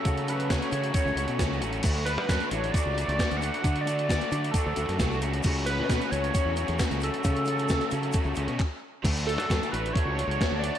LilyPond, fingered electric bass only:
\new Staff \with { instrumentName = "Fingered electric bass" } { \clef bass \time 4/4 \key d \lydian \tempo 4 = 133 cis4. cis8 r16 cis,16 cis,16 b,16 cis,8 a,,8 | d,8. fis,16 fis,16 r16 a,,8 r16 cis,8 cis,16 r16 d,8 r16 | d4. d8 r16 d,16 d,16 fis,16 c,8 cis,8 | cis,8. b,16 b,16 r16 cis,8 r16 e,8 e,16 r16 cis,8 r16 |
cis4. cis8 r16 cis,16 cis,16 b,16 r4 | d,8. fis,16 fis,16 r16 a,,8 r16 cis,8 cis,16 r16 d,8 r16 | }